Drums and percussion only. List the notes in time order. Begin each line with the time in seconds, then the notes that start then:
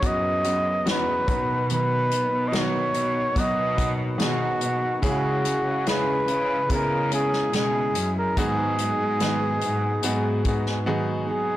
0.03 kick, closed hi-hat
0.44 closed hi-hat
0.86 snare, closed hi-hat
1.28 kick, closed hi-hat
1.70 closed hi-hat
2.11 closed hi-hat
2.53 snare, closed hi-hat
2.94 closed hi-hat
3.36 kick, closed hi-hat
3.78 kick, closed hi-hat
4.20 snare, closed hi-hat
4.61 closed hi-hat
5.03 kick, closed hi-hat
5.45 closed hi-hat
5.87 snare, closed hi-hat
6.28 closed hi-hat
6.70 kick, closed hi-hat
7.12 closed hi-hat
7.33 snare
7.53 snare, closed hi-hat
7.95 closed hi-hat
8.37 kick, closed hi-hat
8.78 closed hi-hat
9.20 snare, closed hi-hat
9.61 closed hi-hat
10.03 closed hi-hat
10.45 kick, closed hi-hat
10.66 snare